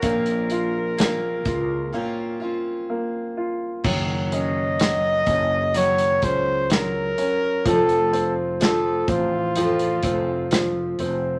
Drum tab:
CC |----------------|x---------------|----------------|
HH |xxx-x-x---------|--x-x-x-xxx-x-x-|xxx-x-x-xxx-x-x-|
SD |----o-----------|----o-------o---|----o-------o---|
BD |o-----o---------|o-----o---o-----|o-----o---o-----|